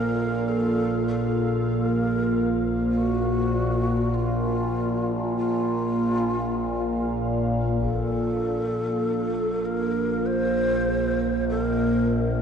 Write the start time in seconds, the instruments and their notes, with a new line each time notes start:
Already playing: synth drone A#1 A#2, analog synth pad A#3 F4 F5, shakuhachi A#4
0.49 shakuhachi A4
1.08 shakuhachi A4
1.69 shakuhachi A4
1.86 shakuhachi A#4
2.91 shakuhachi F#4
4.14 shakuhachi F4
5.37 shakuhachi F4
7.81 synth drone A#1 A#2, shakuhachi A4, taiko
9.65 shakuhachi A#4
10.26 shakuhachi C5
11.49 shakuhachi A4
11.60 shakuhachi A#4